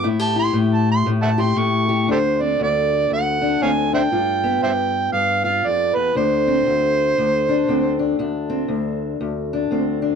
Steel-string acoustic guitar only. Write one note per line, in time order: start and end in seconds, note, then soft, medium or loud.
0.04 0.52 A2 medium
0.04 0.20 E4 medium
0.20 1.37 G4 medium
0.36 1.55 E4 medium
0.53 1.05 A2 medium
1.06 1.55 A2 medium
1.38 1.88 G4 medium
1.57 2.08 A2 medium
1.57 2.06 E4 medium
1.89 2.06 G4 medium
2.07 2.58 D2 medium
2.07 3.41 D4 medium
2.40 3.61 C4 medium
2.60 3.09 D2 medium
3.10 3.60 D2 medium
3.42 3.92 D4 medium
3.61 4.11 D2 medium
3.61 4.10 C4 medium
3.93 4.12 D4 medium
4.12 4.61 G2 medium
4.12 5.43 F4 medium
4.44 6.13 B3 medium
4.62 5.11 G2 medium
5.13 5.64 G2 medium
5.44 6.13 F4 medium
5.66 5.95 F2 medium
5.96 6.15 E2 medium
6.15 6.66 D2 medium
6.15 7.49 D4 medium
6.47 7.67 C4 medium
6.66 7.18 D2 medium
7.18 7.67 D2 medium
7.49 7.99 D4 medium
7.68 8.18 D2 medium
7.68 8.17 C4 medium
7.99 8.19 D4 medium
8.19 8.67 D2 medium
8.19 9.53 D4 medium
8.50 9.71 C4 medium
8.68 9.19 D2 medium
9.21 9.69 D2 medium
9.53 10.02 D4 medium
9.71 10.15 D2 medium
9.71 10.15 C4 medium
10.02 10.15 D4 medium